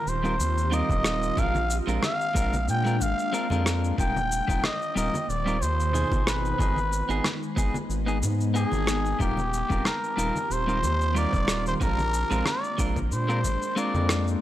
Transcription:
Already playing: D#3 C4 F4 G4 A#4
0.07 D#1 C5, shaker
0.23 G3 C4 D#4 F4 A#4, shaker
0.39 D#2, high conga, shaker
0.58 shaker
0.71 G3 C4 D#4 F4 A#4 D#5, shaker
0.89 D#1, kick, high conga, shaker
1.04 cross-stick, shaker
1.23 shaker
1.37 A#1 G#3 A#3 C4 D4 F4 A#4 F5, kick, low conga, shaker
1.55 high conga, shaker
1.70 shaker
1.87 A#1 G#3 C4 D4 F4 A#4, shaker
2.03 F5, cross-stick, high conga, shaker
2.21 shaker
2.34 A#1 G#3 C4 D4 F4 A#4, kick, shaker
2.53 high conga, shaker
2.68 A#2 G5, shaker
2.85 G#3 C4 D4 F4 A#4, shaker
3.00 G#1 F5, high conga, low conga, shaker
3.19 shaker
3.32 G#3 C4 D4 F4 A#4, shaker
3.50 F2 G#3 C4 D4 F4 A#4, high conga, shaker
3.66 cross-stick, shaker
3.84 shaker
3.98 D#1 D#3 G3 C4 D#4 F4 A#4 C5 G5, kick, low conga, shaker
4.16 high conga, shaker
4.32 shaker
4.48 D#1 G3 C4 D#4 F4 A#4, kick, shaker
4.63 D#5, cross-stick, high conga, shaker
4.82 shaker
4.95 D#1 G3 C4 D#4 F4 A#4 D#5, shaker
5.14 high conga, shaker
5.29 D#1 D5, shaker
5.46 G3 C4 D#4 F4 A#4, shaker
5.61 D#2 C5, high conga, shaker
5.80 shaker
5.93 B2 D#4 G#4, shaker
6.12 G#1, kick, high conga, shaker
6.26 G#3 B3 D#4 B4, cross-stick, shaker
6.45 shaker
6.58 G#1 B3 D#4 G#4, kick, low conga, shaker
6.76 high conga, shaker
6.93 shaker
7.09 G#1 B3 D#4 G#4, shaker
7.24 cross-stick, high conga, shaker
7.43 shaker
7.56 G#1 B3 D#4 G#4, kick, shaker
7.74 high conga, shaker
7.89 G#1, shaker
8.06 B3 D#4 G#4, shaker
8.22 G#2, high conga, low conga, shaker
8.41 shaker
8.54 B3 D#4 G#4, shaker
8.72 G#1, high conga, shaker
8.87 cross-stick, shaker
9.06 shaker
9.19 D#1 D#3 G3 C4 D#4 F4 G4 A#4, kick, low conga, shaker
9.37 high conga, shaker
9.53 shaker
9.69 D#1 G3 C4 D#4 F4 A#4, kick, shaker
9.85 A#4, cross-stick, high conga, shaker
10.04 shaker
10.17 D#1 G3 C4 D#4 F4 A#4, shaker
10.36 high conga, shaker
10.50 D#1 C5, shaker
10.67 G3 C4 D#4 F4 A#4, shaker
10.83 D#2, high conga, shaker
11.01 shaker
11.15 G3 C4 D#4 F4 A#4 D5, shaker
11.33 D#1, kick, high conga, shaker
11.48 cross-stick, shaker
11.66 C5, shaker
11.80 A#1 G#3 A#3 C4 D4 F4 A#4, kick, low conga, shaker
11.98 high conga, shaker
12.14 shaker
12.30 A#1 G#3 C4 D4 F4 A#4, low conga, shaker
12.46 D5, cross-stick, high conga, shaker
12.64 shaker
12.78 A#1 G#3 C4 D4 F4 A#4, kick, shaker
12.96 kick, high conga, shaker
13.11 A#2 C5, shaker
13.28 G#3 C4 D4 F4 A#4, shaker
13.44 G#1, high conga, low conga, shaker
13.62 shaker
13.76 G#3 C4 D4 F4 A#4 D5, shaker
13.94 F2, high conga, shaker
14.09 cross-stick, shaker
14.28 shaker

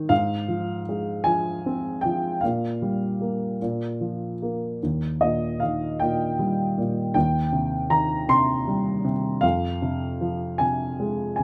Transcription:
Already playing: D#3 C4 D#4
0.09 G#2 F5
0.48 F3
0.89 G#3
1.24 F3 G#5
1.66 C4
2.01 F3 G5
2.41 A#2 F5
2.82 G3
3.21 A#3
3.62 A#2
4.01 F3
4.42 A#3
4.83 D#2
5.21 A#2 D#5
5.60 D#3 F5
6.00 A#2 G5
6.39 G3
6.78 A#2
7.14 D#2 G5
7.53 C3
7.90 D#3 A#5
8.29 C3 C6
8.67 G3
9.05 C3
9.41 F2 F5
9.82 C3
10.21 F3
10.58 C3 G#5
11.00 G#3
11.36 C3 G#5

